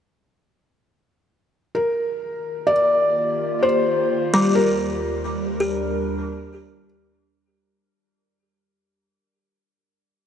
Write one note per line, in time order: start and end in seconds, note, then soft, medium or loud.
1.75 4.57 D#3 medium
1.75 2.72 A#4 medium
2.12 5.67 F4 medium
2.12 7.35 G4 medium
2.23 5.66 A#3 medium
2.67 3.65 D5 medium
3.63 4.58 C5 medium
4.34 7.84 G3 medium
4.55 7.35 D#2 medium
4.55 6.83 A#4 medium
4.64 7.34 G3 medium
4.81 7.34 A#4 medium
5.16 7.33 D4 medium
5.60 9.13 G4 soft